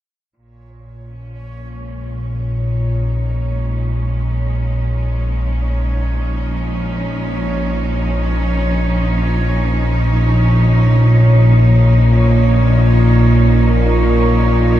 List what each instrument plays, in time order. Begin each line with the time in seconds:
0.37 synth drone A#1 A#2, cello section A#2, synth texture C#5
1.06 cello section C#4
1.10 cello section F3
1.69 cello section G#3
2.55 cello section D#4
8.90 cello section A#3